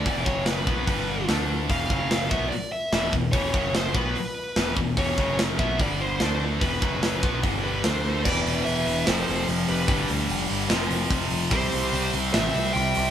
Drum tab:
CC |--------|--------|--------|--------|
HH |o-o-o-o-|o-o-o-o-|o-o-o-o-|o-o-o-o-|
SD |--o---o-|--o---o-|--o---o-|--o---o-|
BD |oo-oo---|oo-o---o|oo-o---o|oo-oo---|

CC |--------|x-------|--------|--------|
HH |o-o-o-o-|-ooooooo|oooooooo|oooooooo|
SD |--o---o-|----o---|----o---|----o---|
BD |oo-oo---|o-------|o-----o-|o-------|